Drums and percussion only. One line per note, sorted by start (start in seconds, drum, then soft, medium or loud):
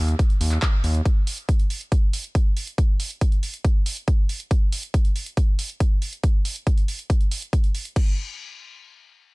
0.08 closed hi-hat medium
0.19 kick loud
0.19 closed hi-hat medium
0.30 closed hi-hat soft
0.41 open hi-hat loud
0.52 clap soft
0.62 kick loud
0.62 clap loud
0.62 closed hi-hat medium
0.84 open hi-hat medium
0.95 closed hi-hat soft
1.06 kick loud
1.06 closed hi-hat medium
1.27 open hi-hat loud
1.38 closed hi-hat soft
1.49 kick loud
1.49 closed hi-hat medium
1.59 closed hi-hat soft
1.70 open hi-hat medium
1.81 closed hi-hat soft
1.92 kick loud
1.92 closed hi-hat medium
2.13 open hi-hat loud
2.24 closed hi-hat soft
2.35 kick loud
2.35 closed hi-hat medium
2.57 open hi-hat medium
2.67 closed hi-hat soft
2.78 kick loud
2.78 closed hi-hat medium
3.00 open hi-hat medium
3.11 closed hi-hat medium
3.21 kick loud
3.21 closed hi-hat medium
3.32 closed hi-hat soft
3.43 open hi-hat medium
3.54 closed hi-hat soft
3.65 kick loud
3.65 closed hi-hat medium
3.86 open hi-hat loud
3.97 closed hi-hat soft
4.08 kick loud
4.08 closed hi-hat medium
4.29 open hi-hat medium
4.40 closed hi-hat medium
4.51 kick loud
4.51 closed hi-hat medium
4.72 open hi-hat loud
4.83 closed hi-hat medium
4.94 kick loud
4.94 closed hi-hat medium
5.05 closed hi-hat soft
5.16 open hi-hat medium
5.26 closed hi-hat medium
5.37 kick loud
5.37 closed hi-hat medium
5.59 open hi-hat medium
5.70 closed hi-hat soft
5.80 kick loud
5.80 closed hi-hat medium
6.02 open hi-hat medium
6.13 closed hi-hat medium
6.24 kick loud
6.24 closed hi-hat medium
6.45 open hi-hat medium
6.56 closed hi-hat medium
6.67 kick loud
6.67 closed hi-hat medium
6.78 closed hi-hat soft
6.88 open hi-hat medium
6.99 closed hi-hat medium
7.10 kick loud
7.10 closed hi-hat medium
7.21 closed hi-hat soft
7.31 open hi-hat medium
7.42 closed hi-hat medium
7.53 kick loud
7.53 closed hi-hat medium
7.64 closed hi-hat soft
7.75 open hi-hat medium
7.85 closed hi-hat medium
7.96 kick loud
7.96 crash medium